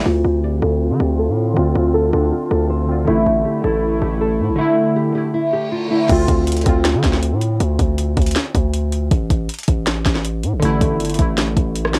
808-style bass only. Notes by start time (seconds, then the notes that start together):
0.06 D2
0.24 D2
0.62 D2
0.91 D3
1.00 D2
1.28 A2
1.57 D2
1.75 D2
2.13 D2
2.51 D2
3.08 A1
3.26 A1
3.64 A1
4.02 A1
4.40 A2
4.49 A1
6.09 D2
6.28 D2
6.66 D2
6.94 D3
7.04 D2
7.32 A2
7.60 D2
7.79 D2
8.17 D2
8.55 D2
9.11 A1
9.30 A1
9.68 A1
10.06 A1
10.43 A2
10.53 A1
10.62 A1
10.81 A1
11.00 G1
11.19 A1
11.57 A1